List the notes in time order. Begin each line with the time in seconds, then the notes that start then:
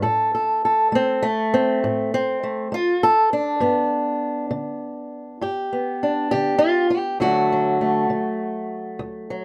Already playing: A3
0.02 A2 A4
0.35 A4
0.65 A4
0.92 A3 C4
1.22 A3
1.54 C4
1.84 A2
2.14 C4
2.43 A3
2.72 A3 F4
3.03 A4
3.33 D4
3.60 G2 B3
4.51 D3
5.41 G2 G4
5.73 B3
6.03 D4
6.31 D3 G4
6.58 F4
6.90 G4
7.20 D2 D3 F#3 A3 F#4
7.52 F#3
7.81 A3
8.10 D3
8.99 D2
9.30 F#3